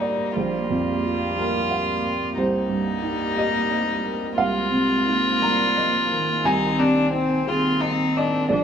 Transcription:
Already playing: C2 G2 G3 A#3 D#4 G4 C5 D#5
0.01 A#4 D5
0.35 A#1 F4 C5 F5
0.70 F2
1.03 F4
1.37 G4 A#4
1.71 F5
2.04 A#4
2.35 C2 G3 A#3 D#4 C5
2.68 G2
3.02 D#4
3.35 G4 D#5
3.71 D#5
4.03 A#4
4.36 C2 G#3 A#3 F4 F5 G#5
4.71 C3
5.07 D#4
5.42 G3 A#4 A#5
5.77 F3 D#5
6.12 D#3 A#4
6.44 C2 C4 D#4 G#5
6.79 C3 D4
7.12 C4 D#4
7.47 D#3 C4 F4 G#4
7.81 D#4 D#5
8.16 D4 A#4 D#5
8.49 A#1 F3 D4 D5

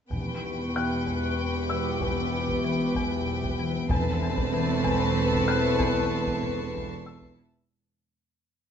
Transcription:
0.09 E1 E2 B3 G4 B4 G5 B5 C#6, taiko
0.43 E2
0.74 E3 G5 F#6
1.06 E2, taiko
1.38 E2 D6
1.69 E3 E6
2.01 E2, taiko
2.33 E2
2.48 taiko
2.64 E3
2.96 E2, taiko
3.28 E2
3.43 taiko
3.60 E3
3.89 E1 E2 C4 A4 B4 A5 C7, taiko
4.22 E2
4.38 taiko
4.54 E3 C#6
4.85 E2, taiko
5.17 E2
5.32 taiko
5.48 E3 F#6
5.79 E2, taiko
6.11 E2
6.27 taiko
6.43 E3, taiko low-mid
6.74 E2, taiko
7.06 E2 E6
7.21 taiko
7.39 E3

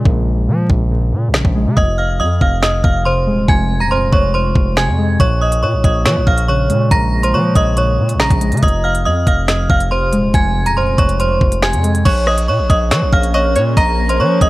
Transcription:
Already playing: A#2 C#3 G#3
0.05 A#1 A#2, kick
0.27 A#2
0.48 A#2 F3
0.70 A#1 A#2, kick
0.91 A#2
1.12 A#2
1.28 A#1
1.34 C#3, finger snap, snare
1.45 A#1, kick
1.55 G#3
1.66 C#3
1.77 F1 F2 D#5 D#6, kick
1.98 F2 F5 F6
2.20 F2 D#5 D#6
2.41 F1 F2 F5 F6, kick
2.63 F2 D#5 D#6, finger snap, snare
2.84 F1 F2 F5 F6, kick
3.05 C3 C5 C6
3.27 D#1 G#3
3.48 F1 F2 G#5 G#6, kick
3.70 F2
3.80 D#1 A#5 A#6
3.91 F2 C5 C6
4.12 F1 F2 C#5 C#6, kick
4.34 F2 C5 C6
4.55 F1 F2, kick
4.77 C3 G#5 G#6, finger snap, snare
4.88 F2
4.98 G#3
5.20 A#1 A#2 C#5 C#6, kick, closed hi-hat
5.41 A#2 D#5 D#6
5.52 closed hi-hat
5.63 A#2 C#5 C#6
5.73 A#1
5.84 A#1 A#2 D#5 D#6, kick, closed hi-hat
6.05 A#2 F3 C#5 C#6, finger snap, snare, closed hi-hat
6.16 A#1
6.27 A#1 A#2 F5 F6, kick
6.38 closed hi-hat
6.48 C#3 C#5 C#6
6.70 A#2 G#3, closed hi-hat
6.91 A#1 A#2 A#5 A#6, kick, closed hi-hat
7.13 A#2
7.23 C5 C6, closed hi-hat
7.34 A#2 F3 C#5 C#6
7.55 A#1 A#2 D#5 D#6, kick, closed hi-hat
7.77 A#2 C#5 C#6, closed hi-hat
7.98 A#2
8.09 closed hi-hat
8.14 A#1
8.20 C#3 A#5 A#6, finger snap, snare
8.30 A#1, kick, closed hi-hat
8.41 G#3, closed hi-hat
8.52 C#3, closed hi-hat
8.57 closed hi-hat
8.62 F1 F2 D#5 D#6, kick, closed hi-hat
8.68 closed hi-hat
8.84 F2 F5 F6
8.95 closed hi-hat
9.05 F2 D#5 D#6
9.27 F1 F2 F5 F6, kick, closed hi-hat
9.48 F2 D#5 D#6, finger snap, snare, closed hi-hat
9.70 F1 F2 F5 F6, kick
9.80 closed hi-hat
9.91 C3 C5 C6
10.13 D#1 G#3, closed hi-hat
10.34 F1 F2 G#5 G#6, kick, closed hi-hat
10.55 F2
10.66 D#1 A#5 A#6, closed hi-hat
10.77 F2 C5 C6
10.98 F1 F2 C#5 C#6, kick, closed hi-hat
11.09 closed hi-hat
11.20 F2 C5 C6, closed hi-hat
11.41 F1 F2, kick
11.52 closed hi-hat
11.62 C3 G#5 G#6, finger snap, snare
11.73 F2, closed hi-hat
11.84 G#3, closed hi-hat
11.95 closed hi-hat
12.05 A#1 A#3 C#4 G#4 C#5 C#6, kick, closed hi-hat, crash
12.27 D#5 D#6, cross-stick
12.38 closed hi-hat
12.48 A#2 C#5 C#6
12.59 A#1
12.70 A#1 D#5 D#6, kick, closed hi-hat
12.91 F3 C#5 C#6, finger snap, snare, closed hi-hat
13.02 A#1
13.13 A#1 F5 F6, kick
13.23 closed hi-hat
13.34 C#5 D#5 C#6
13.56 A#2 C#5, closed hi-hat
13.77 A#1 D#5 A#5 A#6, kick, closed hi-hat
14.09 C5 C6, closed hi-hat
14.20 F3 C#5 C#6
14.41 A#1 D#5 D#6, kick, closed hi-hat

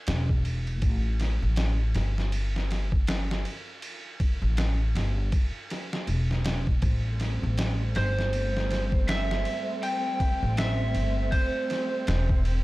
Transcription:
0.07 E1, snare, ride
0.29 kick
0.45 ride
0.67 ride
0.82 A1, kick, ride
1.20 snare, ride
1.43 A1
1.56 snare, ride
1.95 G1, snare, ride
2.18 snare
2.32 ride
2.56 snare
2.71 snare, ride
2.92 kick
3.07 snare, ride
3.31 snare
3.45 ride
3.82 ride
4.20 kick, ride
4.42 A1
4.57 snare, ride
4.95 G1, snare, ride
5.32 kick, ride
5.70 snare, ride
5.93 snare
6.07 E1, ride
6.31 snare
6.45 snare, ride
6.67 kick
6.82 A1 G3 A3 C4, kick, ride
7.20 snare, ride
7.43 A1
7.58 snare, ride
7.95 G1 C5, snare, ride
8.19 snare
8.33 ride
8.57 snare
8.71 snare, ride
8.92 kick
9.08 E5, snare, ride
9.31 snare
9.45 ride
9.83 G5, ride
10.20 kick, ride
10.43 A1
10.57 E5, snare, ride
10.95 G1, ride
11.32 C5, kick, ride
11.70 snare, ride
12.07 E1, snare, ride
12.29 kick
12.45 ride

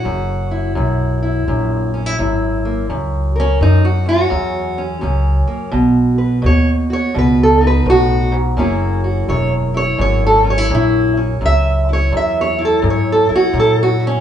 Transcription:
Already playing: F#4
0.05 F#1 F#2
0.51 E4
0.75 B1 F#2
1.22 E4
1.48 A#1 F#2
1.94 C#4
2.06 E4
2.19 G#1 F#2 E4
2.65 A#3
2.90 C#2 F#2
3.36 A#4
3.40 C#4
3.61 F#2 D#4
3.85 F#4
4.06 C#4 F#4
4.30 E2 F#2
4.78 C#4
5.01 C#2 F#2 C#4
5.47 A#3, muted upright bass stroke
5.72 B1 B2
6.18 B4
6.42 D#2 B2
6.46 C#5
6.90 F#4 C#5
7.14 C#2 B2
7.19 B4
7.43 A4
7.61 D#4
7.67 B4
7.86 B1 A2
7.90 F#4
8.32 G#2
8.57 F#1 F#2 A#3 C#4 E4 F#4
9.04 F#4
9.28 E1 F#2 C#5
9.74 E4 C#5
9.98 G#1 F#2 C#5
10.26 A4
10.44 C#4
10.50 C#5
10.58 E4
10.70 A#1 F#2
10.75 E4
11.17 C#4
11.41 C#2 F#2
11.46 E5
11.89 E4
11.93 C#5
12.12 E2 F#2
12.17 E5
12.41 C#5
12.59 E4
12.65 A4
12.82 F#2 G#2
12.90 C#5
13.12 A4
13.29 E4, muted upright bass stroke
13.35 F#4
13.53 F#2 A#2
13.60 A4
13.83 F#4
14.00 E4
14.07 C#4

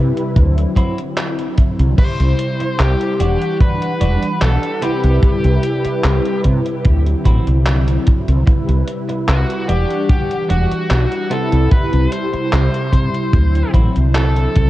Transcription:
Already playing: C3 G3 E4 B4
0.17 muted clean electric guitar stroke, closed hi-hat
0.34 D2 D3 F#3 C4 E4, kick, closed hi-hat
0.58 closed hi-hat
0.76 F#3 C4 E4, kick, closed hi-hat
0.98 closed hi-hat
1.17 muted clean electric guitar stroke, clap, closed hi-hat
1.38 muted clean electric guitar stroke, closed hi-hat
1.58 kick, closed hi-hat
1.79 C2, closed hi-hat
1.97 C3 G3 E4 C5, muted clean electric guitar stroke, kick, closed hi-hat, crash
2.20 C2, muted clean electric guitar stroke, closed hi-hat
2.39 closed hi-hat
2.60 muted clean electric guitar stroke, closed hi-hat
2.79 C2 G4, clap, closed hi-hat
3.01 closed hi-hat
3.18 E1 E3 G3 D4 F#4 F#5, closed hi-hat
3.42 closed hi-hat
3.60 B4, kick, closed hi-hat
3.82 closed hi-hat
4.01 E1 G3 D4 F#4, closed hi-hat
4.23 closed hi-hat
4.41 B1 A4, muted clean electric guitar stroke, clap, closed hi-hat
4.63 muted clean electric guitar stroke, closed hi-hat
4.80 C3 G3 B3 C4 E4 G4 B4, closed hi-hat
5.04 C2, closed hi-hat
5.23 kick, closed hi-hat
5.44 C2, muted clean electric guitar stroke, closed hi-hat
5.63 closed hi-hat
5.84 muted clean electric guitar stroke, muted fretless electric bass stroke, closed hi-hat
6.04 C2, muted clean electric guitar stroke, clap, closed hi-hat
6.25 closed hi-hat
6.44 C3, muted clean electric guitar stroke, kick, closed hi-hat
6.66 muted clean electric guitar stroke, closed hi-hat
6.83 D2 D3 F#3 C4 E4, kick, closed hi-hat
7.07 closed hi-hat
7.25 A1 F#3 C4 E4, kick, closed hi-hat
7.47 C2, closed hi-hat
7.66 muted clean electric guitar stroke, clap, closed hi-hat
7.87 muted clean electric guitar stroke, closed hi-hat
8.07 kick, closed hi-hat
8.28 C2, closed hi-hat
8.46 C3 G3 E4 B4, muted clean electric guitar stroke, kick, closed hi-hat
8.68 C2, muted clean electric guitar stroke, closed hi-hat
8.88 closed hi-hat
9.09 muted clean electric guitar stroke, closed hi-hat
9.28 C2 F#4, muted clean electric guitar stroke, clap, closed hi-hat
9.50 closed hi-hat
9.67 E1 E3 G3 D4 F#4 G4 F#5, closed hi-hat
9.90 closed hi-hat
10.09 G4, kick, closed hi-hat
10.31 closed hi-hat
10.49 E1 G3 D4 F#4, closed hi-hat
10.71 muted fretless electric bass stroke, closed hi-hat
10.90 B1, muted clean electric guitar stroke, clap, closed hi-hat
11.11 muted clean electric guitar stroke, closed hi-hat
11.29 C3 G3 B3 C4 E4 G4 A4, closed hi-hat
11.52 C2, closed hi-hat
11.71 B4, kick, closed hi-hat
11.93 C2, muted clean electric guitar stroke, closed hi-hat
12.12 C5, closed hi-hat
12.33 muted clean electric guitar stroke, muted fretless electric bass stroke, closed hi-hat
12.53 C2, clap, closed hi-hat
12.74 closed hi-hat
12.92 C3, muted clean electric guitar stroke, kick, closed hi-hat
13.14 muted clean electric guitar stroke, closed hi-hat
13.32 D2 D3 F#3 C4 E4, kick, closed hi-hat
13.55 closed hi-hat
13.73 A1 F#3 C4 E4, kick, closed hi-hat
13.96 C2, closed hi-hat
14.14 A4, muted clean electric guitar stroke, clap, closed hi-hat
14.36 muted clean electric guitar stroke, closed hi-hat
14.55 C2, kick, closed hi-hat

